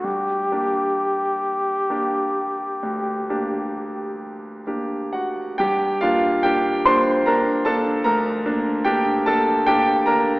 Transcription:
<<
  \new Staff \with { instrumentName = "Trumpet" } { \time 12/8 \key g \minor \tempo 4. = 46 g'1~ g'8 r4. | r1. | }
  \new Staff \with { instrumentName = "Grand piano" } { \time 12/8 \key g \minor << { r1 r4. <fis' fis''>8 | <g' g''>8 <f' f''>8 <g' g''>8 <c'' c'''>8 <bes' bes''>8 <a' a''>8 <bes' bes''>4 <g' g''>8 <a' a''>8 <g' g''>8 <bes' bes''>8 | } \\ { g,8 <bes d' g'>4. <bes d' g'>4 d,8 <bes d' g'>4. <bes d' g'>4 | g,8 <bes d'>8 <bes d'>8 <bes d'>8 <bes d'>8 <bes d'>8 d,8 <bes d'>8 <bes d'>8 <bes d'>8 <bes d'>8 <bes d'>8 | } >> }
>>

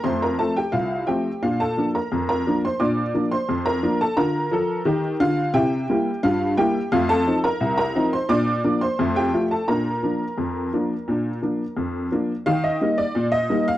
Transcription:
<<
  \new Staff \with { instrumentName = "Honky-tonk piano" } { \time 2/4 \key bes \major \tempo 4 = 87 <c'' c'''>16 <bes' bes''>16 <a' a''>16 <g' g''>16 <f' f''>8 <g' g''>8 | <f' f''>16 <a' a''>8 <bes' bes''>8 <bes' bes''>8 <c'' c'''>16 | <d'' d'''>8. <c'' c'''>8 <bes' bes''>8 <a' a''>16 | <bes' bes''>4. <f' f''>8 |
<g' g''>4 <f' f''>8 <g' g''>8 | <f' f''>16 <a' a''>8 <bes' bes''>8 <bes' bes''>8 <c'' c'''>16 | <d'' d'''>8. <c'' c'''>8 <g' g''>8 <a' a''>16 | <bes' bes''>2~ |
<bes' bes''>4. r8 | f''16 ees''8 d''8 ees''8 f''16 | }
  \new Staff \with { instrumentName = "Honky-tonk piano" } { \time 2/4 \key bes \major <f, a>8 <f a c'>8 c,8 <f a c'>8 | <bes, d'>8 <f bes d'>8 f,8 <f bes d'>8 | <bes, d'>8 <f bes d'>8 f,8 <f bes d'>8 | <d f'>8 <f a'>8 <ees g'>8 d8 |
<c e'>8 <g bes e'>8 g,8 <g bes e'>8 | <f, a>8 <f c' ees'>8 c,8 <f c' ees'>8 | <bes, d'>8 <f bes d'>8 <f, a>8 <f a f'>8 | <bes, d'>8 <f bes d'>8 f,8 <f bes d'>8 |
<bes, d'>8 <f bes d'>8 f,8 <f bes d'>8 | ees8 <g bes ees'>8 bes,8 <g bes ees'>8 | }
>>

